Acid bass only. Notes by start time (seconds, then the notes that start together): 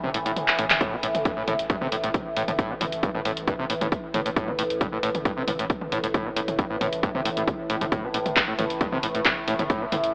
0.04 C3
0.14 A2
0.26 A2
0.59 A2
0.81 A2
0.93 C3
1.03 A2
1.25 G2
1.37 A2
1.48 A2
1.70 G2
1.81 C3
1.92 A2
2.04 A2
2.37 A2
2.48 A2
2.59 A2
2.70 C3
2.81 A2
3.03 G2
3.15 A2
3.25 A2
3.48 G2
3.59 C3
3.70 A2
3.81 A2
4.14 A2
4.26 A2
4.36 A2
4.48 C3
4.59 A2
4.81 G2
4.92 A2
5.03 A2
5.25 G2
5.37 C3
5.48 A2
5.59 A2
5.92 A2
6.04 A2
6.14 A2
6.26 C3
6.36 A2
6.59 G2
6.70 A2
6.81 A2
7.03 G2
7.15 C3
7.25 A2
7.37 A2
7.70 A2
7.81 A2
7.92 A2
8.04 C3
8.14 A2
8.36 G2
8.48 A2
8.59 A2
8.81 G2
8.92 C3
9.03 A2
9.15 A2
9.48 A2
9.59 A2
9.70 A2
9.81 C3
9.92 A2